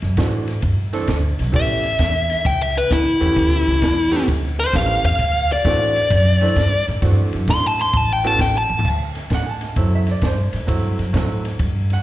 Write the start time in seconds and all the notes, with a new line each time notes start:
0.02 F#2, snare, ride
0.17 A2 E3 A3 C4 D4 F#4, kick, snare, ride
0.48 snare, ride
0.62 G2, kick, ride
0.93 E3 A3 C4 D4 A4, snare, ride
1.07 D2, kick, snare, ride
1.39 B1, snare, ride
1.52 A1 E3 A3 B3 C#4 G4, kick, ride
1.56 E5
1.83 snare, ride
1.99 E2, kick, snare, ride
2.30 snare, ride
2.45 C#2 G5, kick, snare, ride
2.62 E5
2.75 B4, snare, ride
2.90 D2 E4, kick, snare, ride
3.20 E2 E3 A3 B3 C#4 G4, snare, ride
3.36 D2, kick, ride
3.67 C#2, snare, ride
3.82 E2, kick, snare, ride
4.11 E3 A3 B3 C#4 G4, snare, ride
4.28 D2, kick, snare, ride
4.59 C5, snare, ride
4.73 A1 E3 A3 B3 C#4 G4 F5, kick, snare, ride
5.04 E2 F5, snare, ride
5.19 D2, kick, ride
5.50 D5, snare, ride
5.64 A2 E3 A3 C4 D4 F#4, kick, snare, ride
5.96 snare, ride
6.11 F#2, kick, snare, ride
6.41 E3 A3 C4 D4 E4, snare, ride
6.56 G2, kick, snare, ride
6.88 A2, snare, ride
7.01 G2 E3 A3 C4 D4 F#4, kick, snare, ride
7.33 F#2, snare, ride
7.48 A2 C6, kick, snare, ride
7.67 A5
7.79 C6, snare, ride
7.93 A1 A5, kick, ride
8.13 G5
8.24 E3 A3 B3 C#4 F#4 A5, snare, ride
8.39 A1 G5, kick, snare, ride
8.58 A5
8.69 E2, high tom
8.79 floor tom
8.84 D2, kick, crash
9.15 snare, ride
9.30 A2, kick, snare, ride
9.34 F#5
9.45 G#5
9.49 A5
9.61 snare, ride
9.76 F#2 F#3 A3 C4 E4, kick, ride
9.95 E5
10.07 snare, ride
10.11 D5
10.22 G2, kick, snare, ride
10.26 C5
10.53 A2, snare, ride
10.67 G2 F#3 A3 C4 E4, kick, snare, ride
10.99 F#2, snare, ride
11.13 A2 F#3 A3 C4 E4, kick, snare, ride
11.45 snare, ride
11.59 G2, kick, ride
11.90 F#5, snare, ride